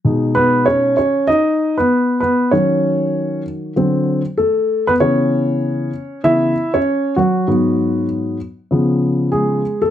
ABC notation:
X:1
M:4/4
L:1/16
Q:"Swing 16ths" 1/4=97
K:C#m
V:1 name="Grand piano"
z2 [B,B]2 [Cc]2 [Cc]2 [Dd]3 [B,B]3 [B,B]2 | c6 z6 [A,A]3 [B,B] | [Cc]8 [Ee]3 [Cc]3 [F,F]2- | [F,F]4 z8 [G,G]3 [A,A] |]
V:2 name="Grand piano" clef=bass
[B,,G,D]6 z8 z2 | [D,F,C]8 [=D,F,=C]2 z6 | [C,E,B,]6 z2 [C,E,B,]2 z6 | [G,,F,B,]6 z2 [C,^E,B,]6 z2 |]